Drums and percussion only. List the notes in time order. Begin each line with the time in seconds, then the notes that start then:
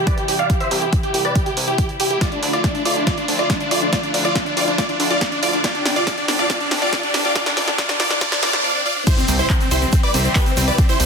0.07 kick, closed hi-hat
0.18 closed hi-hat
0.28 open hi-hat
0.39 closed hi-hat
0.50 kick, closed hi-hat
0.60 closed hi-hat
0.71 open hi-hat
0.82 closed hi-hat
0.93 kick, closed hi-hat
1.03 closed hi-hat
1.14 open hi-hat
1.25 closed hi-hat
1.35 kick, closed hi-hat
1.46 closed hi-hat
1.57 open hi-hat
1.68 closed hi-hat
1.78 kick, closed hi-hat
1.89 closed hi-hat
2.00 open hi-hat
2.10 closed hi-hat
2.21 kick, snare, closed hi-hat
2.32 closed hi-hat
2.43 open hi-hat
2.53 closed hi-hat
2.64 kick, snare, closed hi-hat
2.75 closed hi-hat
2.85 open hi-hat
2.96 closed hi-hat
3.07 kick, snare, closed hi-hat
3.18 closed hi-hat
3.28 open hi-hat
3.39 closed hi-hat
3.50 kick, snare, closed hi-hat
3.60 closed hi-hat
3.71 open hi-hat
3.82 closed hi-hat
3.93 kick, snare, closed hi-hat
4.03 closed hi-hat
4.14 open hi-hat
4.25 closed hi-hat
4.35 kick, snare, closed hi-hat
4.46 closed hi-hat
4.57 open hi-hat
4.68 closed hi-hat
4.78 kick, snare, closed hi-hat
4.89 closed hi-hat
5.00 open hi-hat
5.10 closed hi-hat
5.21 kick, snare, closed hi-hat
5.32 closed hi-hat
5.43 open hi-hat
5.53 closed hi-hat
5.64 kick, snare, closed hi-hat
5.75 closed hi-hat
5.86 snare, open hi-hat
5.96 closed hi-hat
6.07 kick, snare, closed hi-hat
6.18 closed hi-hat
6.28 snare, open hi-hat
6.39 closed hi-hat
6.50 kick, snare, closed hi-hat
6.61 closed hi-hat
6.71 snare, open hi-hat
6.82 closed hi-hat
6.93 kick, snare, closed hi-hat
7.03 closed hi-hat
7.14 snare, open hi-hat
7.25 closed hi-hat
7.36 kick, snare, closed hi-hat
7.46 snare, closed hi-hat
7.57 snare, open hi-hat
7.68 snare, closed hi-hat
7.78 kick, snare, closed hi-hat
7.89 snare, closed hi-hat
8.00 snare, open hi-hat
8.11 snare, closed hi-hat
8.21 kick, snare, closed hi-hat
8.32 snare, closed hi-hat
8.43 snare, open hi-hat
8.53 snare, closed hi-hat
9.07 kick, closed hi-hat, crash, shaker
9.18 closed hi-hat, shaker
9.28 open hi-hat, shaker
9.39 closed hi-hat, shaker
9.50 kick, clap, closed hi-hat, shaker
9.61 closed hi-hat, shaker
9.71 open hi-hat, shaker
9.82 closed hi-hat, shaker
9.92 kick, closed hi-hat, shaker
10.03 closed hi-hat
10.14 open hi-hat, shaker
10.24 closed hi-hat, shaker
10.36 kick, clap, closed hi-hat, shaker
10.46 closed hi-hat, shaker
10.57 open hi-hat, shaker
10.68 closed hi-hat, shaker
10.78 kick, closed hi-hat, shaker
10.89 closed hi-hat, shaker
11.00 open hi-hat, shaker